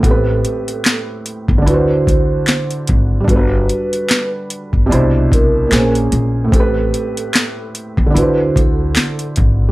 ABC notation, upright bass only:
X:1
M:4/4
L:1/16
Q:"Swing 16ths" 1/4=74
K:Ador
V:1 name="Upright bass" clef=bass
A,,,2 z4 z G,,, D,,2 D,,2 z2 _A,,,2 | G,,,2 z4 z G,,, C,,2 C,,2 _B,,,2 B,,,2 | A,,,2 z4 z G,,, D,,2 D,,2 z2 _A,,,2 |]